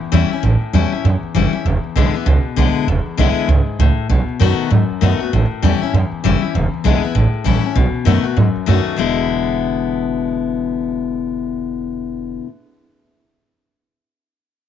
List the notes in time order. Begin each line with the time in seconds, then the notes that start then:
Already playing: E2
0.01 muted upright bass stroke
0.12 E2 E3 G3 C#4 E4
0.31 C#4 E4, muted upright bass stroke
0.43 A1 A2
0.62 muted upright bass stroke
0.73 E2 E3 G3 C#4 E4
0.92 C#4 E4
1.04 E2 F#2
1.23 muted upright bass stroke
1.35 F#1 E3 G3 C#4 E4
1.53 C#4 E4
1.65 E1 E2
1.84 muted upright bass stroke
1.96 B1 D3 G#3 B3 E4
2.14 B3 E4, muted upright bass stroke
2.26 C#2 B2
2.45 muted upright bass stroke
2.56 B1 D3 G#3 B3 E4
2.75 muted upright bass stroke
2.87 E1 E2
3.06 muted upright bass stroke
3.17 B1 D3 G#3 B3 E4
3.36 muted upright bass stroke
3.48 C#2 G#2
3.67 muted upright bass stroke
3.79 C#2 A2
3.97 muted upright bass stroke
4.10 B1 B2
4.29 muted upright bass stroke
4.40 F#2 D#3 A3 B3 F#4
4.71 F#2 G#2
4.90 muted upright bass stroke
5.01 F#2 D#3 A3 B3 F#4
5.20 B3 F#4, muted upright bass stroke
5.33 A1 A2
5.51 muted upright bass stroke
5.62 E2 E3 G3 C#4 E4
5.82 C#4 E4, muted upright bass stroke
5.93 E2 F#2
6.11 muted upright bass stroke
6.24 F#1 E3 G3 C#4 E4
6.42 C#4 E4, muted upright bass stroke
6.54 E1 E2
6.73 muted upright bass stroke
6.84 B1 D3 G#3 B3 E4
7.03 B3 E4, muted upright bass stroke
7.15 A1 A2
7.34 muted upright bass stroke
7.44 A#1 E3 G3 C#4 E4
7.64 C#4 E4, muted upright bass stroke
7.76 B1 B2
7.95 muted upright bass stroke
8.05 F#2 D#3 A3 B3 F#4
8.23 B3 F#4, muted upright bass stroke
8.37 F#2 G#2
8.56 muted upright bass stroke
8.66 F#2 D#3 A3 B3 F#4
8.86 muted upright bass stroke
8.96 E1 E2 B2 D3 G#3 B3 E4